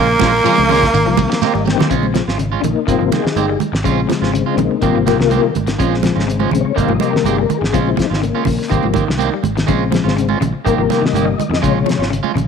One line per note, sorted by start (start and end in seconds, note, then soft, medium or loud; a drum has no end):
0.00 0.16 A#1 medium
0.00 0.14 C#3 medium
0.00 1.66 A#3 loud
0.00 1.68 A#3 loud
0.10 muted clean electric guitar stroke soft
0.20 0.40 A#1 medium
0.20 0.38 F3 medium
0.20 0.33 G#3 medium
0.20 0.33 C#4 medium
0.20 0.33 F4 medium
0.20 kick medium
0.20 snare medium
0.20 ride bell medium
0.20 high conga loud
0.20 shekere soft
0.34 muted clean electric guitar stroke soft
0.44 0.80 C#3 medium
0.44 0.62 F3 medium
0.44 0.81 F3 medium
0.44 0.81 G#3 medium
0.44 0.58 G#3 medium
0.44 0.81 C4 loud
0.44 0.57 C#4 medium
0.44 0.57 F4 loud
0.44 muted fingered electric bass stroke soft
0.44 ride bell soft
0.44 shekere medium
0.58 0.87 C#2 loud
0.58 muted clean electric guitar stroke medium
0.58 high conga medium
0.69 0.87 C#3 medium
0.69 0.84 G#3 medium
0.69 0.84 C#4 medium
0.69 0.85 F4 medium
0.69 open hi-hat medium
0.69 low conga medium
0.69 shekere soft
0.83 kick medium
0.83 snare soft
0.94 1.04 G#1 loud
0.94 1.03 D#3 medium
0.94 muted clean electric guitar stroke soft
0.94 ride bell soft
0.94 shekere medium
1.05 1.26 C2 medium
1.05 1.41 D#3 medium
1.05 1.24 F3 medium
1.05 1.41 G3 medium
1.05 1.40 A#3 medium
1.05 1.41 C4 loud
1.17 muted clean electric guitar stroke soft
1.17 kick medium
1.17 ride bell medium
1.17 high conga loud
1.17 low conga medium
1.17 shekere soft
1.30 1.48 D#3 medium
1.30 muted clean electric guitar stroke soft
1.30 snare medium
1.30 ride bell medium
1.42 1.55 A#3 medium
1.42 1.54 C4 medium
1.42 1.54 G4 medium
1.42 1.64 D#5 medium
1.42 snare soft
1.42 ride bell medium
1.42 high conga medium
1.42 shekere medium
1.54 1.74 G#1 medium
1.54 1.72 G3 medium
1.54 muted clean electric guitar stroke soft
1.54 high conga medium
1.65 1.90 D#3 loud
1.65 1.90 G3 medium
1.65 1.90 A#3 medium
1.65 1.90 C4 loud
1.65 1.88 G5 medium
1.65 muted clean electric guitar stroke soft
1.65 snare medium
1.65 high conga medium
1.65 shekere soft
1.78 1.86 D#3 medium
1.78 1.89 A#3 soft
1.78 1.90 C4 medium
1.78 1.90 G4 medium
1.78 snare medium
1.78 low conga medium
1.90 2.20 A#1 medium
1.90 2.08 C#3 medium
1.90 2.23 C#3 medium
1.90 2.05 G#3 medium
1.90 2.23 G#3 soft
1.90 2.24 C4 medium
1.90 2.05 C#4 medium
1.90 2.06 F4 medium
1.90 kick medium
1.90 closed hi-hat medium
2.03 high conga medium
2.14 2.32 F3 medium
2.14 muted clean electric guitar stroke soft
2.14 snare medium
2.14 closed hi-hat soft
2.14 high conga medium
2.28 2.56 G#1 medium
2.28 2.38 C#4 soft
2.28 2.39 F4 medium
2.28 snare medium
2.38 2.56 C#3 medium
2.38 muted clean electric guitar stroke soft
2.38 closed hi-hat medium
2.52 2.61 G#3 medium
2.52 2.62 C#4 medium
2.52 2.62 F4 medium
2.60 2.73 A#1 medium
2.60 2.80 C#3 medium
2.60 2.63 D4 medium
2.60 muted clean electric guitar stroke soft
2.60 closed hi-hat medium
2.64 2.86 A#3 medium
2.64 2.87 D#4 medium
2.64 low conga medium
2.76 muted clean electric guitar stroke soft
2.87 2.98 G#1 medium
2.87 3.20 C3 medium
2.87 2.97 D#3 medium
2.87 3.03 D#3 medium
2.87 3.21 G3 soft
2.87 3.03 A#3 medium
2.87 3.21 A#3 medium
2.87 3.03 C4 medium
2.87 3.11 C4 medium
2.87 3.12 F4 medium
2.87 muted clean electric guitar stroke medium
2.87 kick medium
2.87 closed hi-hat medium
2.99 3.09 G#1 medium
2.99 3.17 F3 medium
3.12 3.25 D#3 medium
3.12 3.24 A#3 medium
3.12 3.25 C4 medium
3.12 3.57 D#4 medium
3.12 3.60 G#4 medium
3.12 muted clean electric guitar stroke medium
3.12 snare soft
3.12 closed hi-hat soft
3.12 high conga medium
3.12 low conga medium
3.24 3.42 D#3 medium
3.24 muted fingered electric bass stroke soft
3.24 muted clean electric guitar stroke soft
3.24 snare medium
3.36 3.55 G1 medium
3.36 3.49 D#3 medium
3.36 3.48 A#3 medium
3.36 3.47 C4 medium
3.36 3.47 G4 medium
3.36 closed hi-hat medium
3.36 high conga medium
3.48 3.67 G3 medium
3.48 muted clean electric guitar stroke soft
3.60 muted clean electric guitar stroke soft
3.60 closed hi-hat medium
3.60 high conga medium
3.60 low conga medium
3.72 3.82 G#1 medium
3.72 muted clean electric guitar stroke soft
3.72 snare medium
3.83 4.04 A#1 medium
3.83 4.77 C#3 medium
3.83 4.02 C#3 medium
3.83 4.78 G#3 soft
3.83 4.00 G#3 medium
3.83 4.78 C4 medium
3.83 4.00 C#4 medium
3.83 4.00 F4 loud
3.83 kick medium
3.83 closed hi-hat medium
4.09 4.27 F3 medium
4.09 muted clean electric guitar stroke soft
4.09 snare medium
4.09 closed hi-hat soft
4.09 high conga medium
4.22 4.41 G#1 medium
4.22 4.34 C#4 soft
4.22 4.32 F4 medium
4.22 snare medium
4.34 4.51 C#3 medium
4.34 muted clean electric guitar stroke soft
4.34 closed hi-hat medium
4.46 4.56 G#3 medium
4.46 4.57 F4 medium
4.53 4.67 A#1 medium
4.53 4.57 D4 medium
4.58 4.76 C#3 medium
4.58 4.80 A#3 medium
4.58 4.81 D#4 medium
4.58 muted clean electric guitar stroke soft
4.58 closed hi-hat soft
4.58 low conga medium
4.71 muted clean electric guitar stroke medium
4.81 4.92 G#1 medium
4.81 5.51 C3 medium
4.81 4.97 D#3 medium
4.81 4.92 D#3 medium
4.81 5.51 G3 soft
4.81 5.51 A#3 medium
4.81 4.97 A#3 medium
4.81 5.04 C4 medium
4.81 4.97 C4 medium
4.81 5.04 F4 medium
4.81 4.98 G4 medium
4.81 kick medium
4.81 closed hi-hat medium
4.95 5.14 G#1 medium
4.95 5.13 F3 medium
5.06 5.19 D#3 medium
5.06 5.19 A#3 medium
5.06 5.19 C4 medium
5.06 5.51 F4 medium
5.06 5.19 G4 medium
5.06 5.54 A#4 loud
5.06 snare soft
5.06 closed hi-hat soft
5.06 high conga medium
5.06 low conga medium
5.18 5.38 C2 medium
5.18 5.37 D#3 medium
5.18 muted clean electric guitar stroke soft
5.18 snare medium
5.30 5.43 D#3 medium
5.30 5.43 A#3 medium
5.30 5.43 C4 medium
5.30 5.42 G4 medium
5.30 closed hi-hat medium
5.30 high conga medium
5.43 5.61 D#3 medium
5.43 muted clean electric guitar stroke soft
5.54 5.75 G#1 medium
5.54 muted clean electric guitar stroke soft
5.54 closed hi-hat medium
5.54 high conga medium
5.54 low conga medium
5.67 5.76 D#3 medium
5.67 muted clean electric guitar stroke medium
5.67 snare medium
5.67 closed hi-hat medium
5.78 6.09 A#1 medium
5.78 6.72 C#3 medium
5.78 5.98 C#3 medium
5.78 5.94 F3 medium
5.78 6.72 G#3 soft
5.78 5.94 G#3 medium
5.78 6.73 C4 medium
5.78 5.94 C#4 medium
5.78 5.94 F4 loud
5.78 kick medium
5.78 closed hi-hat medium
5.94 snare soft
6.03 6.22 F3 medium
6.03 muted clean electric guitar stroke soft
6.03 snare medium
6.03 closed hi-hat soft
6.03 high conga medium
6.16 6.45 G#1 medium
6.16 6.26 G#3 soft
6.16 6.26 C#4 medium
6.16 6.26 F4 medium
6.16 snare medium
6.28 muted clean electric guitar stroke medium
6.28 closed hi-hat medium
6.39 6.51 F3 medium
6.39 6.51 G#3 medium
6.39 6.52 C#4 medium
6.39 6.52 F4 medium
6.39 high conga medium
6.51 6.63 A#1 medium
6.51 6.71 C#3 medium
6.51 muted clean electric guitar stroke soft
6.51 closed hi-hat medium
6.51 low conga medium
6.61 6.76 C#5 medium
6.65 muted clean electric guitar stroke soft
6.75 6.87 G#1 loud
6.75 7.46 C3 medium
6.75 6.91 D#3 medium
6.75 6.86 D#3 medium
6.75 7.46 G3 soft
6.75 6.92 A#3 medium
6.75 7.47 A#3 medium
6.75 6.92 C4 medium
6.75 6.92 G4 medium
6.75 6.93 F5 medium
6.75 kick medium
6.75 closed hi-hat medium
6.88 6.98 G#1 medium
6.88 7.07 F3 medium
6.88 high conga medium
6.95 7.10 D#5 medium
7.00 7.12 A#3 medium
7.00 7.13 C4 medium
7.00 7.14 G4 medium
7.00 closed hi-hat medium
7.00 high conga medium
7.10 7.31 D#3 medium
7.10 7.26 A#4 medium
7.10 muted clean electric guitar stroke soft
7.10 muted fingered electric bass stroke soft
7.16 snare medium
7.24 7.44 G1 loud
7.24 7.38 D#3 medium
7.24 7.38 A#3 medium
7.24 7.38 C4 medium
7.24 7.38 G4 medium
7.24 7.41 G#4 medium
7.24 closed hi-hat medium
7.24 high conga medium
7.38 7.56 G3 medium
7.38 7.58 A#4 medium
7.38 muted clean electric guitar stroke soft
7.49 muted clean electric guitar stroke soft
7.49 closed hi-hat medium
7.49 high conga medium
7.49 low conga medium
7.59 7.71 G#1 medium
7.59 7.71 D#3 medium
7.59 7.74 G#4 medium
7.59 muted clean electric guitar stroke soft
7.64 snare medium
7.72 7.93 A#1 medium
7.72 8.06 C#3 medium
7.72 7.92 C#3 medium
7.72 7.89 G#3 medium
7.72 8.06 G#3 soft
7.72 8.07 C4 medium
7.72 7.89 C#4 medium
7.72 7.89 F4 medium
7.72 7.90 F4 medium
7.72 kick medium
7.72 closed hi-hat medium
7.90 8.06 E4 medium
7.97 8.16 F3 medium
7.97 muted clean electric guitar stroke soft
7.97 kick medium
7.97 snare medium
7.97 closed hi-hat medium
7.97 high conga medium
8.06 8.22 D#4 medium
8.06 8.21 F4 medium
8.11 8.30 G#1 medium
8.11 8.21 C#4 soft
8.11 snare medium
8.22 8.40 C#3 medium
8.22 8.69 A#3 medium
8.22 muted clean electric guitar stroke soft
8.22 closed hi-hat medium
8.35 8.45 G#3 medium
8.35 8.45 C#4 medium
8.35 8.45 F4 medium
8.45 8.57 A#1 medium
8.45 8.64 C#3 medium
8.45 kick medium
8.45 open hi-hat medium
8.45 low conga medium
8.59 muted clean electric guitar stroke soft
8.59 snare soft
8.69 8.82 G#1 loud
8.69 9.03 C3 medium
8.69 8.80 D#3 medium
8.69 8.86 D#3 medium
8.69 9.03 G3 soft
8.69 9.04 A#3 medium
8.69 8.86 A#3 medium
8.69 8.86 C4 medium
8.69 8.86 G4 medium
8.69 kick medium
8.69 closed hi-hat medium
8.83 9.03 G#1 medium
8.83 9.02 F3 medium
8.83 high conga medium
8.94 9.08 D#3 medium
8.94 9.06 A#3 medium
8.94 9.06 C4 medium
8.94 9.06 G4 medium
8.94 kick medium
8.94 closed hi-hat soft
8.94 high conga medium
8.94 low conga medium
9.07 9.28 C2 medium
9.07 9.26 D#3 medium
9.07 muted clean electric guitar stroke soft
9.07 snare medium
9.18 9.32 D#3 medium
9.18 9.32 A#3 medium
9.18 9.31 C4 medium
9.18 9.30 G4 loud
9.18 closed hi-hat medium
9.18 high conga medium
9.32 9.51 G3 medium
9.32 muted clean electric guitar stroke soft
9.43 9.63 G#1 medium
9.43 muted clean electric guitar stroke soft
9.43 closed hi-hat medium
9.43 high conga medium
9.43 low conga medium
9.55 9.65 D#3 medium
9.55 muted clean electric guitar stroke medium
9.55 snare medium
9.55 closed hi-hat soft
9.67 9.98 A#1 medium
9.67 10.37 C#3 soft
9.67 9.87 C#3 medium
9.67 9.83 G#3 medium
9.67 10.37 G#3 soft
9.67 10.38 C4 medium
9.67 9.83 C#4 medium
9.67 9.83 F4 medium
9.67 kick medium
9.67 closed hi-hat medium
9.67 low conga medium
9.92 10.10 F3 medium
9.92 muted clean electric guitar stroke soft
9.92 snare medium
9.92 closed hi-hat soft
9.92 high conga loud
10.04 10.34 G#1 medium
10.04 10.16 C#4 soft
10.04 10.16 F4 medium
10.08 snare medium
10.16 10.35 C#3 medium
10.16 muted clean electric guitar stroke soft
10.16 closed hi-hat medium
10.29 10.39 G#3 medium
10.29 10.40 C#4 medium
10.29 10.40 F4 medium
10.29 high conga medium
10.41 10.51 A#1 medium
10.41 10.59 C#3 medium
10.41 muted clean electric guitar stroke soft
10.41 closed hi-hat medium
10.41 low conga medium
10.53 muted clean electric guitar stroke soft
10.65 10.76 G#1 medium
10.65 11.35 C3 medium
10.65 10.80 D#3 medium
10.65 11.35 G3 soft
10.65 10.81 A#3 medium
10.65 11.36 A#3 medium
10.65 10.81 C4 medium
10.65 10.81 G4 medium
10.65 10.78 A#4 medium
10.65 muted clean electric guitar stroke medium
10.65 kick medium
10.65 closed hi-hat medium
10.78 10.87 G#1 medium
10.78 10.96 F3 medium
10.78 11.03 A#4 medium
10.89 11.03 D#3 medium
10.89 11.01 A#3 medium
10.89 11.01 C4 medium
10.89 11.03 G4 medium
10.89 snare soft
10.89 closed hi-hat medium
10.89 high conga medium
11.02 11.20 D#3 medium
11.02 11.62 D#5 medium
11.02 muted fingered electric bass stroke soft
11.02 muted clean electric guitar stroke soft
11.02 snare medium
11.13 11.33 G1 medium
11.13 11.27 D#3 medium
11.13 11.27 A#3 medium
11.13 11.26 G4 medium
11.13 muted clean electric guitar stroke medium
11.13 closed hi-hat medium
11.13 high conga medium
11.25 11.44 G3 medium
11.25 muted clean electric guitar stroke soft
11.38 muted clean electric guitar stroke soft
11.38 closed hi-hat medium
11.38 high conga medium
11.38 low conga medium
11.49 11.59 F2 medium
11.49 11.60 D#3 medium
11.49 muted clean electric guitar stroke soft
11.54 snare medium
11.62 11.83 A#1 medium
11.62 11.97 C3 medium
11.62 11.81 C#3 medium
11.62 11.96 C#3 medium
11.62 11.78 G#3 medium
11.62 11.96 G#3 soft
11.62 11.78 C#4 medium
11.62 11.78 F4 medium
11.62 12.11 C#5 medium
11.62 kick medium
11.62 closed hi-hat medium
11.86 12.05 F3 medium
11.86 muted clean electric guitar stroke soft
11.86 closed hi-hat soft
11.86 high conga medium
11.90 snare medium
11.99 12.19 G#1 medium
11.99 12.09 C#4 soft
11.99 12.09 F4 soft
11.99 snare medium
12.10 12.29 C#3 medium
12.10 muted clean electric guitar stroke soft
12.10 closed hi-hat medium
12.23 12.33 G#3 medium
12.23 12.33 C#4 medium
12.23 12.33 F4 medium
12.23 high conga medium
12.34 12.46 A#1 medium
12.34 12.48 C#3 medium
12.34 muted clean electric guitar stroke soft
12.34 closed hi-hat soft
12.34 low conga medium